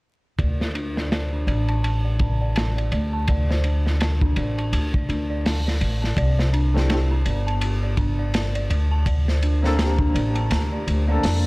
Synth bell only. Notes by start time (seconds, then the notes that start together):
0.38 D5
0.60 C5
0.75 D4
0.97 D5
1.12 A5
1.33 D4
1.47 D5
1.69 A5
1.83 A5
2.05 D5
2.20 D4
2.41 D5
2.56 A5
2.77 D5
2.92 D5
3.13 A5
3.29 D5
3.50 C5
3.64 D4
3.86 D5
4.01 A5
4.22 D4
4.37 D5
4.58 A5
4.73 A5
4.94 D5
5.09 D4
5.30 D5
5.45 A5
5.67 D5
5.81 D5
6.02 A5
6.18 D5
6.39 C5
6.53 D4
6.75 D5
6.90 A5
7.11 D4
7.26 D5
7.47 A5
7.62 A5
7.83 D5
7.97 D4
8.19 D5
8.34 A5
8.55 D5
8.70 D5
8.91 A5
9.06 D5
9.28 C5
9.43 D4
9.64 D5
9.78 A5
9.99 D4
10.14 D5
10.35 A5
10.50 A5
10.72 D5
10.87 D4
11.08 D5
11.23 A5